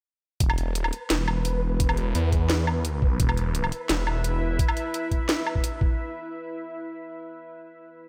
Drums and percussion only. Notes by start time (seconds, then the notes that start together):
0.40 kick, closed hi-hat
0.50 low woodblock
0.58 closed hi-hat
0.75 closed hi-hat
0.84 low woodblock
0.93 closed hi-hat
1.10 snare, closed hi-hat
1.28 low woodblock
1.45 closed hi-hat
1.80 kick, closed hi-hat
1.89 low woodblock
1.97 closed hi-hat
2.15 closed hi-hat
2.32 kick, closed hi-hat
2.50 snare, closed hi-hat
2.67 low woodblock
2.85 closed hi-hat
3.02 kick
3.20 kick, closed hi-hat
3.29 low woodblock
3.37 closed hi-hat
3.55 closed hi-hat
3.64 low woodblock
3.72 closed hi-hat
3.89 snare, closed hi-hat
4.07 low woodblock
4.24 closed hi-hat
4.59 kick, closed hi-hat
4.68 low woodblock
4.77 closed hi-hat
4.94 closed hi-hat
5.11 kick, closed hi-hat
5.29 snare, closed hi-hat
5.47 low woodblock
5.55 kick
5.64 closed hi-hat
5.81 kick